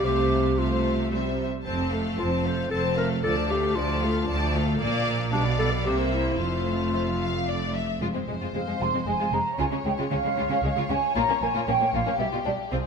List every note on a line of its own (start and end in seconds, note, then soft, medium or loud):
0.05 1.42 C2 soft
0.05 1.42 C3 soft
0.05 0.58 A3 soft
0.05 0.60 G4 medium
0.05 0.57 C5 soft
0.05 0.58 F5 soft
0.59 1.11 A3 soft
0.59 1.12 F4 soft
0.59 1.11 C5 soft
0.59 1.11 F5 soft
1.12 1.45 G3 soft
1.12 1.45 C5 soft
1.12 1.45 E5 soft
1.65 2.12 F1 soft
1.65 2.12 F2 soft
1.65 1.90 C4 soft
1.65 1.91 C5 soft
1.65 1.90 A5 soft
1.92 2.19 A3 soft
1.92 2.18 A4 soft
1.92 2.19 F5 soft
2.18 2.65 F1 soft
2.18 2.65 F2 soft
2.18 2.45 C4 soft
2.18 2.30 F4 medium
2.18 2.45 C5 soft
2.18 2.45 A5 soft
2.45 2.71 A3 soft
2.45 2.72 A4 soft
2.45 2.70 C5 medium
2.45 2.71 F5 soft
2.71 3.18 F1 soft
2.71 3.18 F2 soft
2.71 2.96 C4 soft
2.71 2.83 A4 medium
2.71 2.96 C5 soft
2.71 2.96 A5 soft
2.97 3.24 A3 soft
2.97 3.24 A4 soft
2.97 3.09 A#4 medium
2.97 3.24 F5 soft
3.23 3.70 D2 medium
3.23 3.49 F3 soft
3.23 3.35 A4 medium
3.23 3.49 D5 soft
3.23 3.48 A5 soft
3.50 3.77 A3 soft
3.50 3.77 G4 medium
3.50 3.76 A4 soft
3.50 3.76 F5 soft
3.75 4.22 D2 medium
3.75 4.03 F3 soft
3.75 4.54 F4 medium
3.75 4.03 D5 soft
3.75 4.02 A5 soft
4.02 4.29 A3 soft
4.02 4.28 A4 soft
4.02 4.29 F5 soft
4.28 4.74 D2 medium
4.28 4.53 F3 soft
4.28 4.53 D5 soft
4.28 4.53 A5 soft
4.54 4.81 A3 soft
4.54 4.81 A4 soft
4.54 4.79 F5 soft
4.80 5.29 A#1 medium
4.80 5.29 A#2 medium
4.80 5.29 A#3 medium
4.80 5.29 D5 soft
4.80 5.29 F5 medium
5.32 5.85 B1 medium
5.32 5.85 B2 medium
5.32 5.40 G3 soft
5.32 5.44 D4 medium
5.32 5.84 D5 medium
5.32 5.84 F5 soft
5.59 5.67 G3 soft
5.59 5.71 A4 medium
5.85 6.39 C2 soft
5.85 6.39 C3 soft
5.85 6.38 A#3 soft
5.85 5.97 G4 medium
5.85 6.38 C5 soft
5.85 6.39 E5 soft
6.12 6.40 E4 medium
6.39 7.78 F1 soft
6.39 7.78 F2 soft
6.39 7.81 A3 soft
6.39 7.75 F4 medium
6.39 6.87 C5 soft
6.39 7.81 F5 soft
6.93 7.01 C5 soft
7.20 7.47 F5 soft
7.48 7.75 D5 soft
7.75 8.02 E5 soft
8.01 8.06 F1 soft
8.01 8.06 F2 soft
8.01 8.07 G#3 soft
8.01 8.07 F4 medium
8.01 9.55 C5 soft
8.14 8.20 F2 soft
8.14 8.20 G#3 soft
8.14 8.20 C4 soft
8.28 8.33 F1 soft
8.28 8.33 F2 soft
8.28 8.33 G#3 soft
8.41 8.46 F2 soft
8.41 8.47 G#3 medium
8.41 8.46 F4 soft
8.54 8.60 F1 soft
8.54 8.60 F2 soft
8.54 8.60 G#3 soft
8.54 8.60 C4 soft
8.54 8.79 F5 medium
8.67 8.72 F2 soft
8.67 8.72 G#3 soft
8.67 8.73 G#3 soft
8.80 8.85 F1 soft
8.80 8.86 F2 soft
8.80 8.86 G#3 soft
8.80 8.85 F4 soft
8.80 9.07 C6 medium
8.93 8.99 F2 soft
8.93 9.00 G#3 soft
8.93 8.99 C4 soft
9.07 9.12 F1 soft
9.07 9.12 F2 soft
9.07 9.12 G#3 soft
9.07 9.33 G#5 medium
9.19 9.25 F2 soft
9.19 9.25 G#3 medium
9.19 9.25 F4 soft
9.32 9.38 F1 soft
9.32 9.38 F2 soft
9.32 9.39 G#3 soft
9.32 9.37 C4 soft
9.32 9.59 A#5 medium
9.59 9.64 C#2 medium
9.59 9.64 C#3 medium
9.59 9.65 G#3 soft
9.59 9.64 F4 medium
9.59 12.15 C#5 soft
9.59 9.65 G#5 medium
9.72 9.77 C#3 soft
9.72 9.77 G#3 soft
9.72 9.77 C#4 soft
9.85 9.90 C#2 soft
9.85 9.90 C#3 soft
9.85 9.90 G#3 soft
9.85 9.92 G5 medium
9.98 10.03 C#3 medium
9.98 10.04 G#3 medium
9.98 10.03 F4 medium
10.11 10.16 C#2 soft
10.11 10.16 C#3 soft
10.11 10.16 G#3 soft
10.11 10.17 C#4 soft
10.11 10.88 F5 medium
10.24 10.29 C#3 soft
10.24 10.30 G#3 soft
10.37 10.43 C#2 medium
10.37 10.42 C#3 medium
10.37 10.43 G#3 soft
10.37 10.43 F4 medium
10.50 10.56 C#3 soft
10.50 10.56 G#3 soft
10.50 10.56 C#4 soft
10.63 10.68 C#2 soft
10.63 10.69 C#3 soft
10.63 10.69 G#3 soft
10.76 10.81 C#3 medium
10.76 10.82 G#3 medium
10.76 10.82 F4 medium
10.89 10.94 C#2 soft
10.89 10.94 C#3 soft
10.89 10.95 G#3 soft
10.89 10.95 C#4 soft
10.89 11.16 G#5 medium
11.15 11.21 A#1 medium
11.15 11.21 A#2 medium
11.15 11.21 A#3 medium
11.15 11.21 F4 medium
11.15 11.41 A#5 medium
11.28 11.34 A#2 soft
11.28 11.34 A#3 soft
11.28 11.35 C#4 soft
11.41 11.47 A#1 soft
11.41 11.47 A#2 soft
11.41 11.47 A#3 soft
11.41 11.48 A#3 soft
11.41 11.68 G#5 medium
11.54 11.60 A#2 medium
11.54 11.60 A#3 medium
11.54 11.59 F4 medium
11.67 11.73 A#1 soft
11.67 11.72 A#2 soft
11.67 11.73 A#3 soft
11.67 11.73 C#4 soft
11.67 11.93 G5 medium
11.80 11.86 A#2 soft
11.80 11.86 A#3 soft
11.93 11.99 A#1 medium
11.93 11.99 A#2 medium
11.93 11.99 A#3 soft
11.93 11.99 F4 soft
11.93 12.19 F5 medium
12.06 12.11 A#2 soft
12.06 12.12 A#3 soft
12.06 12.12 C#4 soft
12.19 12.25 B1 soft
12.19 12.25 B2 soft
12.19 12.25 G3 soft
12.19 12.24 B3 soft
12.19 12.72 G4 soft
12.19 12.26 E5 medium
12.33 12.38 B2 soft
12.33 12.38 G3 soft
12.33 12.38 F4 soft
12.45 12.51 B1 soft
12.45 12.51 B2 soft
12.45 12.51 G3 soft
12.45 12.50 D4 soft
12.45 12.53 D5 soft
12.71 12.77 C2 soft
12.71 12.78 C3 soft
12.71 12.77 C4 soft
12.71 12.77 F4 soft
12.71 12.87 G#4 soft
12.71 12.87 C5 medium